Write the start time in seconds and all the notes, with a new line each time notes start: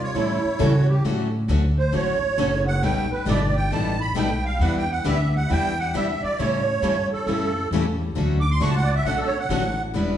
Already playing: C3 F4
0.04 C#5
0.15 A2 E3 G3 C#4 E4 A4
0.44 muted upright bass stroke
0.60 C#3 E3 G3 C#4 E4 F#4 A4
0.88 G4
1.04 A2 D3 F#3 A3 C#4 F#4 A4
1.48 D2 D3 F#3 A3 C#4 F#4 A4
1.78 C5
1.92 A1 D3 F#3 A3 C#4 F#4 A4 C#5
2.38 F#1 D3 F#3 A3 C#4 F#4 A4
2.67 F#5
2.82 B1 B2 G3 A3 D#4 G4 A4 B4 G5
3.11 B4
3.26 G1 B2 G3 A3 D#4 G4 A4 B4 D5
3.56 G5
3.72 A1 B2 G3 A3 D#4 G4 A4 B4 A5
4.01 B5
4.16 B1 B2 G3 A3 D#4 G4 A4 B4 G5
4.45 F5
4.59 E2 E3 G3 B3 D4 E4 G4 B4 F#5
4.78 G5
4.91 F#5
5.04 D2 E3 G3 B3 D4 E4 G4 B4 E5
5.36 F#5
5.50 E2 E3 G3 B3 D4 E4 G4 B4 G5
5.79 F#5
5.94 B2 E3 G3 B3 D4 E4 G4 B4 E5
6.23 D5, muted upright bass stroke
6.38 A2 C#3 E3 G3 A3 C#4 E4 G4 A4 C#5
6.82 G2 C#3 E3 G3 A3 C#4 E4 G4 A4
7.12 A4, muted upright bass stroke
7.26 F#2 C#3 E3 G3 A3 C#4 E4 G4 A4
7.71 E2 C#3 E3 G3 A3 C#4 E4 G4 A4
8.16 D2 D3 F#3 A3 C#4 F#4 A4
8.40 D6
8.51 C6
8.60 C#2 D3 F#3 A3 C#4 F#4 A4 C#6
8.70 A5
8.76 F#5
8.84 D5
8.95 E5
9.05 B1 D3 F#3 A3 C#4 F#4 A4 F#5
9.17 A4
9.27 C#5
9.39 F#5
9.49 A1 D3 F#3 A3 C#4 F#4 A4
9.94 E1 E3 G3 B3 D4 E4 G4 B4